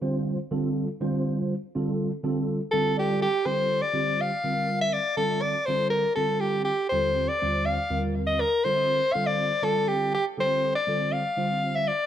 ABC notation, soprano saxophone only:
X:1
M:7/8
L:1/16
Q:1/4=122
K:Bblyd
V:1 name="Soprano saxophone"
z12 z2 | z8 A2 G2 G2 | c3 d3 f4- f e d2 | A2 d2 c2 B2 A2 G2 G2 |
c3 d3 f3 z2 _e B2 | c4 f d3 A2 G2 G2 | c3 d3 f4- f e d2 |]